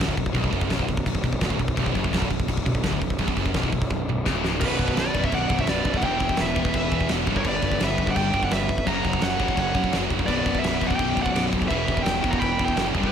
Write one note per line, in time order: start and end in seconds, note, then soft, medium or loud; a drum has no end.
0.00 0.16 D1 medium
0.00 0.15 D2 loud
0.00 snare loud
0.00 crash medium
0.09 kick medium
0.17 0.34 B0 medium
0.17 0.31 B1 medium
0.17 kick medium
0.17 crash medium
0.26 kick medium
0.34 0.52 B0 loud
0.34 0.51 B1 loud
0.34 kick medium
0.34 crash medium
0.44 kick medium
0.52 0.69 F#1 loud
0.52 0.69 F#2 loud
0.52 kick medium
0.52 crash medium
0.61 kick loud
0.70 0.87 B0 medium
0.70 0.88 B1 loud
0.70 kick medium
0.70 snare loud
0.70 crash medium
0.79 kick medium
0.89 1.05 B0 medium
0.89 1.03 B1 medium
0.89 kick medium
0.89 crash medium
0.97 kick loud
1.06 1.23 B0 medium
1.06 1.21 B1 medium
1.06 kick medium
1.06 crash medium
1.15 kick medium
1.24 1.40 B0 medium
1.24 1.39 B1 medium
1.24 kick medium
1.24 crash medium
1.33 kick medium
1.41 1.58 D1 medium
1.41 1.59 D2 loud
1.41 kick medium
1.41 snare loud
1.41 crash medium
1.50 kick medium
1.59 1.76 B0 medium
1.59 1.74 B1 medium
1.59 kick medium
1.59 crash medium
1.68 kick medium
1.77 1.94 B0 medium
1.77 1.95 B1 loud
1.77 kick loud
1.77 crash medium
1.86 kick medium
1.95 2.12 F#1 loud
1.95 2.13 F#2 loud
1.95 kick medium
1.95 crash medium
2.04 kick medium
2.13 2.29 B0 loud
2.13 2.30 B1 loud
2.13 kick medium
2.13 snare loud
2.13 crash medium
2.22 kick medium
2.31 2.47 B0 medium
2.31 2.45 B1 medium
2.31 kick medium
2.31 crash medium
2.40 kick loud
2.48 2.65 B0 medium
2.48 2.63 B1 medium
2.48 kick medium
2.48 crash medium
2.57 kick medium
2.65 2.83 B0 medium
2.65 2.80 B1 medium
2.65 kick medium
2.65 crash medium
2.75 kick medium
2.83 3.00 D1 medium
2.83 2.99 D2 loud
2.83 kick medium
2.83 snare loud
2.83 crash medium
2.93 kick medium
2.99 3.18 B0 medium
2.99 3.15 B1 medium
2.99 kick medium
2.99 crash medium
3.10 kick medium
3.18 3.36 B0 loud
3.18 3.36 B1 loud
3.18 kick medium
3.18 crash medium
3.28 kick medium
3.36 3.54 F#1 medium
3.36 3.54 F#2 loud
3.36 kick medium
3.36 crash medium
3.46 kick medium
3.54 3.71 B0 loud
3.54 3.71 B1 loud
3.54 kick medium
3.54 snare loud
3.54 crash medium
3.63 kick medium
3.72 3.89 B0 medium
3.72 3.87 B1 medium
3.72 kick medium
3.72 crash medium
3.82 kick loud
3.90 4.07 B0 medium
3.90 4.04 B1 medium
3.90 kick medium
3.90 high tom medium
4.09 4.25 B0 medium
4.09 4.23 B1 medium
4.09 mid tom medium
4.26 4.59 D1 medium
4.26 4.61 D2 loud
4.26 kick medium
4.26 snare medium
4.44 snare medium
4.60 4.75 B0 medium
4.60 5.49 B1 medium
4.60 5.50 F#2 loud
4.60 5.49 B2 loud
4.60 4.95 F#4 medium
4.60 4.94 B4 medium
4.60 kick loud
4.60 crash loud
4.60 crash medium
4.79 4.92 B0 medium
4.79 kick medium
4.79 crash medium
4.88 kick medium
4.96 5.09 B0 medium
4.96 5.22 B4 medium
4.96 5.25 D5 medium
4.96 snare loud
4.96 crash medium
5.14 5.28 B0 medium
5.14 5.68 F#2 medium
5.14 5.67 B2 medium
5.14 kick medium
5.14 crash medium
5.18 5.68 B1 medium
5.24 5.33 C#5 medium
5.24 5.33 E5 medium
5.24 kick loud
5.32 5.46 B0 medium
5.32 5.58 D5 medium
5.32 5.58 F#5 loud
5.32 kick loud
5.32 crash medium
5.49 5.63 B0 medium
5.49 5.67 B1 medium
5.49 5.67 F#2 medium
5.49 5.66 B2 medium
5.49 kick loud
5.49 crash medium
5.59 5.70 C#5 medium
5.59 5.69 E5 medium
5.59 kick medium
5.67 5.81 B0 medium
5.67 6.02 B1 medium
5.67 6.03 F#2 medium
5.67 5.96 B4 medium
5.67 5.97 D5 medium
5.67 snare loud
5.67 crash medium
5.71 6.02 B2 medium
5.84 6.03 B0 medium
5.84 kick medium
5.84 crash medium
5.94 6.03 D5 medium
5.94 6.03 F#5 medium
5.94 kick medium
6.01 6.16 E1 medium
6.01 6.90 E2 medium
6.01 6.91 B2 loud
6.01 6.90 E3 medium
6.01 6.36 E5 loud
6.01 6.40 G5 loud
6.01 kick medium
6.01 crash medium
6.20 6.34 E1 loud
6.20 kick medium
6.20 crash medium
6.29 kick medium
6.37 6.52 E1 medium
6.37 6.72 B4 medium
6.37 snare loud
6.37 crash medium
6.42 6.73 E5 loud
6.55 6.69 E1 medium
6.55 7.06 E2 medium
6.55 7.08 B2 medium
6.55 7.08 E3 loud
6.55 kick medium
6.55 crash medium
6.65 kick loud
6.74 6.88 E1 loud
6.74 7.07 B4 medium
6.74 7.08 E5 medium
6.74 kick loud
6.74 crash medium
6.91 7.05 E2 medium
6.91 7.07 E2 medium
6.91 7.08 B2 medium
6.91 7.08 E3 medium
6.91 kick medium
6.91 crash medium
7.01 kick medium
7.08 7.28 E1 medium
7.08 7.25 E2 medium
7.08 7.26 B2 medium
7.08 7.27 E3 medium
7.08 snare loud
7.08 crash medium
7.26 7.41 G1 medium
7.26 8.13 G2 loud
7.26 8.15 D3 loud
7.26 8.16 G3 medium
7.26 kick medium
7.26 crash medium
7.36 7.43 A#4 medium
7.36 7.44 C#5 medium
7.36 kick medium
7.45 7.58 G1 loud
7.45 7.78 B4 medium
7.45 7.80 D5 medium
7.45 kick loud
7.45 crash medium
7.62 7.76 G1 loud
7.62 kick medium
7.62 crash medium
7.72 kick loud
7.80 7.94 G1 loud
7.80 8.32 G2 medium
7.80 8.32 D3 medium
7.80 8.32 G3 medium
7.80 8.06 B4 medium
7.80 snare loud
7.80 crash medium
7.85 8.07 E5 medium
7.98 8.12 G1 medium
7.98 kick medium
7.98 crash medium
8.07 8.13 D5 medium
8.07 8.14 F#5 medium
8.07 kick loud
8.15 8.29 G1 medium
8.15 8.32 G2 medium
8.15 8.33 D3 medium
8.15 8.32 G3 medium
8.15 8.41 D5 medium
8.15 8.41 G5 loud
8.15 kick loud
8.15 crash medium
8.33 8.47 G1 loud
8.33 8.69 G2 medium
8.33 8.68 D3 medium
8.33 8.68 G3 medium
8.33 kick medium
8.33 crash medium
8.43 8.51 D5 medium
8.43 8.52 F#5 medium
8.43 kick medium
8.51 8.65 G1 medium
8.51 8.85 B4 medium
8.51 8.88 E5 loud
8.51 snare loud
8.51 crash medium
8.69 8.82 G1 loud
8.69 kick medium
8.69 crash medium
8.78 kick medium
8.87 9.00 F#1 medium
8.87 9.74 F#2 medium
8.87 9.75 C#3 loud
8.87 9.74 F#3 loud
8.87 9.20 F#5 loud
8.87 9.24 A#5 loud
8.87 kick medium
8.87 crash medium
9.05 9.18 F#1 loud
9.05 kick medium
9.05 crash medium
9.13 kick medium
9.21 9.35 F#1 medium
9.21 9.55 C#5 medium
9.21 9.59 F#5 medium
9.21 snare loud
9.21 crash medium
9.38 9.54 F#1 medium
9.38 9.89 F#2 medium
9.38 9.91 C#3 medium
9.38 9.91 F#3 medium
9.38 kick medium
9.38 crash medium
9.48 kick medium
9.57 9.71 F#1 medium
9.57 9.90 C#5 medium
9.57 9.92 F#5 medium
9.57 kick medium
9.57 crash medium
9.75 9.88 F#2 loud
9.75 9.91 F#2 medium
9.75 9.92 C#3 medium
9.75 9.92 F#3 loud
9.75 kick medium
9.75 crash medium
9.84 kick medium
9.92 10.06 F#1 medium
9.92 10.26 F#2 medium
9.92 10.27 C#3 medium
9.92 10.28 F#3 medium
9.92 snare loud
9.92 crash medium
10.10 10.24 F#1 medium
10.10 kick medium
10.10 crash medium
10.19 kick medium
10.26 10.42 B0 medium
10.26 11.15 B1 medium
10.26 11.15 F#2 loud
10.26 11.14 B2 loud
10.26 10.61 B4 medium
10.26 10.60 D5 medium
10.26 kick loud
10.26 crash medium
10.46 10.60 B0 loud
10.46 kick medium
10.46 crash medium
10.55 kick medium
10.60 10.77 B0 medium
10.60 10.86 B4 medium
10.60 10.89 E5 medium
10.60 crash medium
10.65 snare loud
10.79 10.95 B0 medium
10.79 11.32 B1 medium
10.79 11.33 F#2 medium
10.79 11.33 B2 medium
10.79 kick medium
10.79 crash medium
10.87 10.94 D5 medium
10.87 10.96 F#5 medium
10.87 kick medium
10.95 11.22 D5 medium
10.95 11.22 G5 loud
10.99 11.13 B0 loud
10.99 kick loud
10.99 crash medium
11.15 11.31 B0 medium
11.15 11.32 B1 medium
11.15 11.33 F#2 medium
11.15 11.33 B2 medium
11.15 kick medium
11.15 crash medium
11.22 11.41 D5 medium
11.22 11.40 F#5 medium
11.22 kick loud
11.33 11.48 B0 medium
11.33 11.68 B1 medium
11.33 11.69 F#2 medium
11.33 11.68 B2 loud
11.33 snare loud
11.33 crash medium
11.53 11.66 D1 medium
11.53 kick medium
11.53 crash medium
11.62 kick medium
11.67 11.84 E1 medium
11.67 12.57 E2 medium
11.67 12.57 B2 loud
11.67 12.01 B4 medium
11.67 12.02 E5 loud
11.67 kick medium
11.67 crash medium
11.71 12.57 E3 loud
11.88 12.02 E1 loud
11.88 kick medium
11.88 crash medium
11.97 kick medium
12.02 12.19 E1 medium
12.02 12.29 E5 loud
12.02 12.31 G5 loud
12.02 snare loud
12.02 crash medium
12.23 12.37 E1 medium
12.23 12.74 E2 medium
12.23 12.75 B2 medium
12.23 12.75 E3 loud
12.23 kick loud
12.23 crash medium
12.29 12.37 F#5 medium
12.29 12.39 A#5 loud
12.29 kick loud
12.37 12.63 G5 medium
12.37 12.67 B5 loud
12.42 12.55 E1 medium
12.42 kick loud
12.42 crash medium
12.58 12.73 E2 medium
12.58 12.76 E2 medium
12.58 12.76 B2 medium
12.58 12.75 E3 medium
12.58 kick medium
12.58 crash medium
12.64 12.82 E5 medium
12.64 12.83 G5 medium
12.68 kick medium
12.76 12.90 F#1 medium
12.76 12.93 E2 medium
12.76 12.94 B2 medium
12.76 12.94 E3 loud
12.76 snare loud
12.76 crash medium
12.95 13.08 G1 medium
12.95 13.12 G2 loud
12.95 13.12 D3 loud
12.95 13.12 G3 loud
12.95 kick medium
12.95 crash medium
13.03 13.12 G4 medium
13.03 kick medium
13.08 13.12 B4 loud